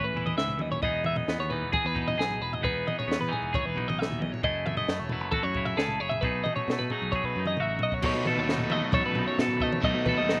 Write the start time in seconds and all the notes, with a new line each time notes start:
Already playing: A2 E3 C#4 E4 B4
0.04 A1 B4
0.14 E2 E3 E4, floor tom
0.26 D#5, floor tom, mid tom
0.37 C#2 G#2 E5, snare
0.48 floor tom
0.58 D#2 F#2 D#5, mid tom
0.72 C#5, floor tom
0.82 E1 E2 B3 D#4 G#4 D#5, kick, floor tom
1.04 E5, floor tom, mid tom
1.16 D#5, floor tom
1.28 E2 B3, snare
1.39 D#2 C#5
1.50 E3 D#4 B4, floor tom
1.62 E1
1.72 G#4, kick, floor tom, mid tom
1.85 E2 B4
1.95 B2 D#4, kick, floor tom
2.08 D#5, floor tom
2.17 B1 G#4, snare
2.31 floor tom
2.40 E1 B4
2.53 D#5, floor tom
2.61 E1 E2 B3 D#4 G#4 B4, kick, floor tom
2.87 D#5, floor tom, mid tom
2.99 C#5, floor tom
3.08 E2 B3, snare
3.19 E2 B4, floor tom
3.28 E3 D#4 G#4
3.33 floor tom
3.42 E1
3.53 G#4 C#5, kick, floor tom, mid tom
3.65 E1 B4
3.76 B1 B2 D#4, floor tom
3.88 D#5, floor tom, mid tom
3.99 E5, snare
4.10 D#2, floor tom
4.19 B1 E2 D#5, mid tom
4.32 C#5, floor tom
4.43 F#1 F#2 A3 E4 G#4 D#5, kick, floor tom
4.66 E5, floor tom, mid tom
4.77 D#5, floor tom
4.88 F#2 A3, snare
5.00 E1 C#5
5.09 F#3 E4 B4, floor tom
5.21 F#1
5.32 F#4 A4, kick, floor tom, mid tom
5.43 F#2 C#5
5.54 C#3 E4, kick, floor tom
5.65 E5, floor tom
5.77 C#2 G#4 A4, snare
5.88 floor tom
6.00 F#1 C#5
6.09 E5, floor tom
6.21 B1 B2 A3 D#4 G#4 B4, kick, floor tom
6.44 D#5, floor tom, mid tom
6.56 C#5, floor tom
6.68 B2, snare
6.72 A3
6.79 B2 B4, floor tom
6.90 F#3 D#4 G#4, floor tom
7.02 B1
7.12 G#4 C#5, kick
7.24 B1 B4, kick
7.36 F#2 D#4
7.46 D#5, mid tom
7.57 A1 F#4 E5, mid tom
7.79 B1, floor tom
7.83 D#5
7.92 C#5, kick
8.02 B1 B2 F#3 A3 D#4 C#5, kick, floor tom, crash
8.14 B2
8.26 A4 B4, floor tom, mid tom
8.37 D#2 C#5
8.49 D#4, snare
8.58 B4, floor tom
8.70 D#2 F#3 A3 D#5, mid tom
8.92 B1 A4 C#5, kick, floor tom, mid tom
9.05 A1 B4
9.15 B1 F#2 D#4, floor tom
9.28 C#5
9.39 B2 A4 B4, snare
9.48 floor tom
9.60 A3 D#5, kick
9.72 C#5, mid tom
9.82 B1 B2 F#3 A3 D#4 D#5, kick, floor tom
9.95 B2
10.06 A4 B4, kick, floor tom, mid tom
10.17 D#2 D#5
10.29 D#4, snare